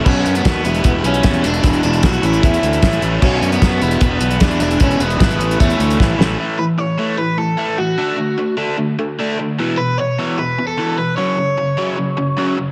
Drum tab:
CC |x---------------|----------------|x---------------|----------------|
HH |--xxx-xxx-xxxxxx|xxxxxxxxxxxxxxx-|--xxx-xxx-xxxxxx|xxxxxxxxxxxx----|
SD |----o-------o-o-|----o-------o---|----o-------o-o-|----o-------o-o-|
BD |o---o---o---o---|o---o---o---o---|o---o---o---o---|o---o---o---o---|

CC |----------------|----------------|----------------|----------------|
HH |----------------|----------------|----------------|----------------|
SD |----------------|----------------|----------------|----------------|
BD |----------------|----------------|----------------|----------------|